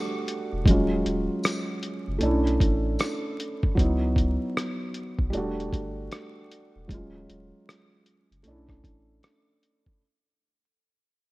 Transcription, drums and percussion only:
0, 0, Header, 1, 2, 480
1, 0, Start_track
1, 0, Tempo, 779221
1, 400, Time_signature, 4, 2, 24, 8
1, 6972, End_track
2, 0, Start_track
2, 0, Title_t, "Drums"
2, 172, Note_on_c, 9, 42, 65
2, 234, Note_off_c, 9, 42, 0
2, 404, Note_on_c, 9, 36, 104
2, 415, Note_on_c, 9, 42, 84
2, 465, Note_off_c, 9, 36, 0
2, 477, Note_off_c, 9, 42, 0
2, 654, Note_on_c, 9, 42, 61
2, 715, Note_off_c, 9, 42, 0
2, 884, Note_on_c, 9, 54, 64
2, 894, Note_on_c, 9, 37, 95
2, 901, Note_on_c, 9, 42, 86
2, 946, Note_off_c, 9, 54, 0
2, 956, Note_off_c, 9, 37, 0
2, 963, Note_off_c, 9, 42, 0
2, 1125, Note_on_c, 9, 42, 58
2, 1187, Note_off_c, 9, 42, 0
2, 1359, Note_on_c, 9, 42, 76
2, 1421, Note_off_c, 9, 42, 0
2, 1521, Note_on_c, 9, 42, 45
2, 1583, Note_off_c, 9, 42, 0
2, 1604, Note_on_c, 9, 36, 88
2, 1609, Note_on_c, 9, 42, 70
2, 1665, Note_off_c, 9, 36, 0
2, 1671, Note_off_c, 9, 42, 0
2, 1842, Note_on_c, 9, 54, 62
2, 1846, Note_on_c, 9, 42, 79
2, 1852, Note_on_c, 9, 37, 90
2, 1904, Note_off_c, 9, 54, 0
2, 1908, Note_off_c, 9, 42, 0
2, 1914, Note_off_c, 9, 37, 0
2, 2093, Note_on_c, 9, 42, 68
2, 2155, Note_off_c, 9, 42, 0
2, 2237, Note_on_c, 9, 36, 88
2, 2298, Note_off_c, 9, 36, 0
2, 2324, Note_on_c, 9, 36, 104
2, 2335, Note_on_c, 9, 42, 80
2, 2386, Note_off_c, 9, 36, 0
2, 2397, Note_off_c, 9, 42, 0
2, 2562, Note_on_c, 9, 36, 89
2, 2574, Note_on_c, 9, 42, 63
2, 2624, Note_off_c, 9, 36, 0
2, 2636, Note_off_c, 9, 42, 0
2, 2816, Note_on_c, 9, 37, 96
2, 2824, Note_on_c, 9, 42, 83
2, 2878, Note_off_c, 9, 37, 0
2, 2885, Note_off_c, 9, 42, 0
2, 3046, Note_on_c, 9, 42, 55
2, 3107, Note_off_c, 9, 42, 0
2, 3195, Note_on_c, 9, 36, 76
2, 3256, Note_off_c, 9, 36, 0
2, 3285, Note_on_c, 9, 42, 75
2, 3347, Note_off_c, 9, 42, 0
2, 3449, Note_on_c, 9, 42, 43
2, 3511, Note_off_c, 9, 42, 0
2, 3526, Note_on_c, 9, 36, 82
2, 3532, Note_on_c, 9, 42, 64
2, 3588, Note_off_c, 9, 36, 0
2, 3594, Note_off_c, 9, 42, 0
2, 3767, Note_on_c, 9, 42, 78
2, 3773, Note_on_c, 9, 37, 94
2, 3829, Note_off_c, 9, 42, 0
2, 3834, Note_off_c, 9, 37, 0
2, 4014, Note_on_c, 9, 42, 68
2, 4075, Note_off_c, 9, 42, 0
2, 4245, Note_on_c, 9, 36, 95
2, 4254, Note_on_c, 9, 42, 79
2, 4307, Note_off_c, 9, 36, 0
2, 4316, Note_off_c, 9, 42, 0
2, 4494, Note_on_c, 9, 42, 57
2, 4555, Note_off_c, 9, 42, 0
2, 4736, Note_on_c, 9, 37, 98
2, 4744, Note_on_c, 9, 42, 82
2, 4798, Note_off_c, 9, 37, 0
2, 4805, Note_off_c, 9, 42, 0
2, 4965, Note_on_c, 9, 42, 55
2, 5027, Note_off_c, 9, 42, 0
2, 5128, Note_on_c, 9, 42, 40
2, 5189, Note_off_c, 9, 42, 0
2, 5199, Note_on_c, 9, 42, 70
2, 5260, Note_off_c, 9, 42, 0
2, 5351, Note_on_c, 9, 36, 88
2, 5357, Note_on_c, 9, 37, 33
2, 5413, Note_off_c, 9, 36, 0
2, 5418, Note_off_c, 9, 37, 0
2, 5445, Note_on_c, 9, 36, 83
2, 5449, Note_on_c, 9, 42, 64
2, 5506, Note_off_c, 9, 36, 0
2, 5511, Note_off_c, 9, 42, 0
2, 5685, Note_on_c, 9, 42, 72
2, 5691, Note_on_c, 9, 37, 85
2, 5747, Note_off_c, 9, 42, 0
2, 5753, Note_off_c, 9, 37, 0
2, 5932, Note_on_c, 9, 42, 64
2, 5993, Note_off_c, 9, 42, 0
2, 6076, Note_on_c, 9, 36, 84
2, 6138, Note_off_c, 9, 36, 0
2, 6972, End_track
0, 0, End_of_file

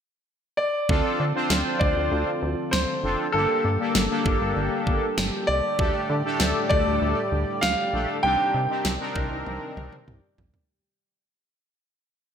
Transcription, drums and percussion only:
0, 0, Header, 1, 2, 480
1, 0, Start_track
1, 0, Tempo, 612245
1, 699, Time_signature, 4, 2, 24, 8
1, 9678, End_track
2, 0, Start_track
2, 0, Title_t, "Drums"
2, 699, Note_on_c, 9, 36, 111
2, 778, Note_off_c, 9, 36, 0
2, 1178, Note_on_c, 9, 38, 104
2, 1256, Note_off_c, 9, 38, 0
2, 1418, Note_on_c, 9, 36, 93
2, 1496, Note_off_c, 9, 36, 0
2, 2139, Note_on_c, 9, 38, 106
2, 2217, Note_off_c, 9, 38, 0
2, 3097, Note_on_c, 9, 38, 108
2, 3175, Note_off_c, 9, 38, 0
2, 3338, Note_on_c, 9, 36, 93
2, 3416, Note_off_c, 9, 36, 0
2, 3817, Note_on_c, 9, 36, 82
2, 3896, Note_off_c, 9, 36, 0
2, 4059, Note_on_c, 9, 38, 110
2, 4137, Note_off_c, 9, 38, 0
2, 4539, Note_on_c, 9, 36, 109
2, 4617, Note_off_c, 9, 36, 0
2, 5016, Note_on_c, 9, 38, 105
2, 5095, Note_off_c, 9, 38, 0
2, 5258, Note_on_c, 9, 36, 96
2, 5336, Note_off_c, 9, 36, 0
2, 5979, Note_on_c, 9, 38, 107
2, 6057, Note_off_c, 9, 38, 0
2, 6937, Note_on_c, 9, 38, 107
2, 7016, Note_off_c, 9, 38, 0
2, 7178, Note_on_c, 9, 36, 96
2, 7257, Note_off_c, 9, 36, 0
2, 7421, Note_on_c, 9, 48, 55
2, 7499, Note_off_c, 9, 48, 0
2, 7661, Note_on_c, 9, 47, 68
2, 7739, Note_off_c, 9, 47, 0
2, 7781, Note_on_c, 9, 47, 59
2, 7860, Note_off_c, 9, 47, 0
2, 7901, Note_on_c, 9, 45, 80
2, 7979, Note_off_c, 9, 45, 0
2, 8141, Note_on_c, 9, 43, 94
2, 8219, Note_off_c, 9, 43, 0
2, 8261, Note_on_c, 9, 43, 83
2, 8339, Note_off_c, 9, 43, 0
2, 9678, End_track
0, 0, End_of_file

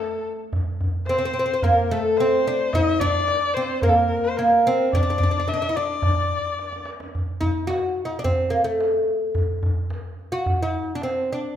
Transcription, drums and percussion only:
0, 0, Header, 1, 2, 480
1, 0, Start_track
1, 0, Tempo, 551978
1, 451, Time_signature, 4, 2, 24, 8
1, 10053, End_track
2, 0, Start_track
2, 0, Title_t, "Tombak"
2, 222, Note_on_c, 9, 62, 24
2, 309, Note_off_c, 9, 62, 0
2, 344, Note_on_c, 9, 62, 24
2, 431, Note_off_c, 9, 62, 0
2, 457, Note_on_c, 9, 64, 87
2, 544, Note_off_c, 9, 64, 0
2, 701, Note_on_c, 9, 64, 79
2, 788, Note_off_c, 9, 64, 0
2, 817, Note_on_c, 9, 62, 27
2, 904, Note_off_c, 9, 62, 0
2, 924, Note_on_c, 9, 63, 72
2, 1011, Note_off_c, 9, 63, 0
2, 1171, Note_on_c, 9, 62, 28
2, 1258, Note_off_c, 9, 62, 0
2, 1413, Note_on_c, 9, 64, 93
2, 1500, Note_off_c, 9, 64, 0
2, 1538, Note_on_c, 9, 62, 28
2, 1625, Note_off_c, 9, 62, 0
2, 1659, Note_on_c, 9, 62, 26
2, 1746, Note_off_c, 9, 62, 0
2, 1890, Note_on_c, 9, 63, 69
2, 1977, Note_off_c, 9, 63, 0
2, 2142, Note_on_c, 9, 62, 24
2, 2229, Note_off_c, 9, 62, 0
2, 2260, Note_on_c, 9, 62, 30
2, 2347, Note_off_c, 9, 62, 0
2, 2378, Note_on_c, 9, 64, 92
2, 2465, Note_off_c, 9, 64, 0
2, 2611, Note_on_c, 9, 64, 84
2, 2698, Note_off_c, 9, 64, 0
2, 2740, Note_on_c, 9, 62, 26
2, 2827, Note_off_c, 9, 62, 0
2, 2853, Note_on_c, 9, 63, 72
2, 2940, Note_off_c, 9, 63, 0
2, 3085, Note_on_c, 9, 62, 28
2, 3172, Note_off_c, 9, 62, 0
2, 3323, Note_on_c, 9, 64, 95
2, 3410, Note_off_c, 9, 64, 0
2, 3442, Note_on_c, 9, 62, 29
2, 3529, Note_off_c, 9, 62, 0
2, 3560, Note_on_c, 9, 62, 29
2, 3647, Note_off_c, 9, 62, 0
2, 3810, Note_on_c, 9, 63, 74
2, 3897, Note_off_c, 9, 63, 0
2, 4043, Note_on_c, 9, 62, 26
2, 4129, Note_off_c, 9, 62, 0
2, 4167, Note_on_c, 9, 62, 30
2, 4254, Note_off_c, 9, 62, 0
2, 4288, Note_on_c, 9, 64, 96
2, 4375, Note_off_c, 9, 64, 0
2, 4417, Note_on_c, 9, 62, 29
2, 4504, Note_off_c, 9, 62, 0
2, 4524, Note_on_c, 9, 64, 94
2, 4611, Note_off_c, 9, 64, 0
2, 4647, Note_on_c, 9, 62, 28
2, 4734, Note_off_c, 9, 62, 0
2, 4764, Note_on_c, 9, 63, 68
2, 4851, Note_off_c, 9, 63, 0
2, 5007, Note_on_c, 9, 62, 27
2, 5094, Note_off_c, 9, 62, 0
2, 5125, Note_on_c, 9, 62, 30
2, 5212, Note_off_c, 9, 62, 0
2, 5238, Note_on_c, 9, 64, 105
2, 5325, Note_off_c, 9, 64, 0
2, 5370, Note_on_c, 9, 62, 29
2, 5457, Note_off_c, 9, 62, 0
2, 5481, Note_on_c, 9, 62, 27
2, 5568, Note_off_c, 9, 62, 0
2, 5728, Note_on_c, 9, 63, 54
2, 5815, Note_off_c, 9, 63, 0
2, 5848, Note_on_c, 9, 62, 65
2, 5935, Note_off_c, 9, 62, 0
2, 5960, Note_on_c, 9, 63, 66
2, 6047, Note_off_c, 9, 63, 0
2, 6088, Note_on_c, 9, 62, 90
2, 6175, Note_off_c, 9, 62, 0
2, 6217, Note_on_c, 9, 64, 70
2, 6304, Note_off_c, 9, 64, 0
2, 6454, Note_on_c, 9, 64, 73
2, 6541, Note_off_c, 9, 64, 0
2, 6698, Note_on_c, 9, 63, 74
2, 6785, Note_off_c, 9, 63, 0
2, 6933, Note_on_c, 9, 62, 24
2, 7020, Note_off_c, 9, 62, 0
2, 7063, Note_on_c, 9, 62, 25
2, 7150, Note_off_c, 9, 62, 0
2, 7170, Note_on_c, 9, 64, 88
2, 7257, Note_off_c, 9, 64, 0
2, 7288, Note_on_c, 9, 62, 22
2, 7375, Note_off_c, 9, 62, 0
2, 7657, Note_on_c, 9, 63, 73
2, 7744, Note_off_c, 9, 63, 0
2, 8014, Note_on_c, 9, 62, 23
2, 8101, Note_off_c, 9, 62, 0
2, 8128, Note_on_c, 9, 64, 91
2, 8215, Note_off_c, 9, 64, 0
2, 8372, Note_on_c, 9, 64, 88
2, 8459, Note_off_c, 9, 64, 0
2, 8612, Note_on_c, 9, 63, 72
2, 8699, Note_off_c, 9, 63, 0
2, 8864, Note_on_c, 9, 62, 27
2, 8951, Note_off_c, 9, 62, 0
2, 8976, Note_on_c, 9, 62, 27
2, 9063, Note_off_c, 9, 62, 0
2, 9097, Note_on_c, 9, 64, 86
2, 9184, Note_off_c, 9, 64, 0
2, 9226, Note_on_c, 9, 62, 27
2, 9313, Note_off_c, 9, 62, 0
2, 9352, Note_on_c, 9, 62, 23
2, 9439, Note_off_c, 9, 62, 0
2, 9581, Note_on_c, 9, 63, 69
2, 9668, Note_off_c, 9, 63, 0
2, 9932, Note_on_c, 9, 62, 25
2, 10019, Note_off_c, 9, 62, 0
2, 10053, End_track
0, 0, End_of_file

